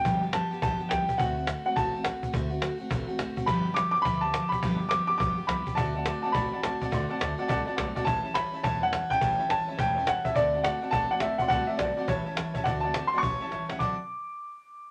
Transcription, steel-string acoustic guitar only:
X:1
M:4/4
L:1/8
Q:"Swing" 1/4=209
K:Dmix
V:1 name="Steel-string acoustic guitar"
[G,,D,=F,G,B,G] [F,G,B,G] [F,G,B,G] [F,G,B,G] [G,,D,F,G,B,G] [F,G,B,G] [F,G,B,G] [F,G,B,G] | [D,A,CF] [A,CF] [D,A,CF] [A,CF] [D,A,CF] [A,CF] [D,A,CF] [A,CF] | [D,A,CF] [A,CF] [D,A,CF] [A,CF] [D,A,CF] [A,CF] [D,A,CF] [A,CF] | [G,,D,=F,G,B,G] [F,G,B,G] [F,G,B,G] [F,G,B,G] [G,,D,F,G,B,G] [F,G,B,G] [F,G,B,G] [F,G,B,G] |
[G,,D,=F,G,B,G] [F,G,B,G] [F,G,B,G] [F,G,B,G] [G,,D,F,G,B,G] [F,G,B,G] [F,G,B,G] [F,G,B,G] | [D,A,CF] [A,CF] [D,A,CF] [A,CF] [D,A,CF] [A,CF] [D,A,CF] [A,CF] | [D,A,CF] [A,CF] [D,A,CF] [A,CF] [D,A,CF] [A,CF] [D,A,CF] [A,CF] | [A,,E,G,^CE] [G,CE] [E,G,CE] [G,CE] [A,,E,G,CE] [G,CE] [E,G,CE] [G,CE] |
[A,,E,G,^CE] [G,CE] [E,G,CE] [G,CE] [A,,E,G,CE] [G,CE] [E,G,CE] [G,CE] | [D,A,CF] [A,CF] [D,A,CF] [A,CF] [D,A,CF] [A,CF] [D,A,CF] [A,CF] | [D,A,CF] [A,CF] [D,A,CF] [A,CF] [A,,E,G,^CE] [G,CE] [E,G,CE] [G,CE] | [D,A,CF] [A,CF] [D,A,CF] [A,CF] [A,,E,G,^CE] [G,CE] [E,G,CE] [G,CE] |
[D,F,CDE] z6 z |]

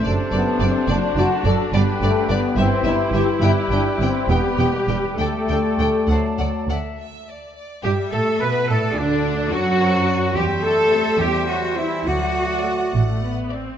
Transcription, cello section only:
X:1
M:6/8
L:1/8
Q:3/8=70
K:G
V:1 name="Cello section" clef=bass
F,, F,, F,, F,, F,, F,, | G,, G,, G,, G,, G,, G,, | G,, G,, G,, E,, E,, E,, | D,, D,, D,, D,, D,, D,, |
z3 G A B | A D2 F3 | G A2 G F E | F3 z3 |]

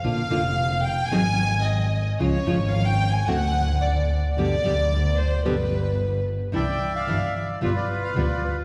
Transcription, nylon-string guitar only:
X:1
M:4/4
L:1/8
Q:1/4=111
K:Gphr
V:1 name="Nylon-string guitar"
[D,B,DF] [D,B,DF] z2 [E,_G,CEA] z3 | [_D,F,A,_DF] [D,F,A,DF] z2 [=D,=A,C^F] z3 | [=B,,D,G,=B,G] [B,,D,G,B,G] z2 [B,,D,G,B,G] z3 | [K:C] [C,E,G,DE] z [C,E,G,DE] z [G,B,F] z [G,B,F] z |]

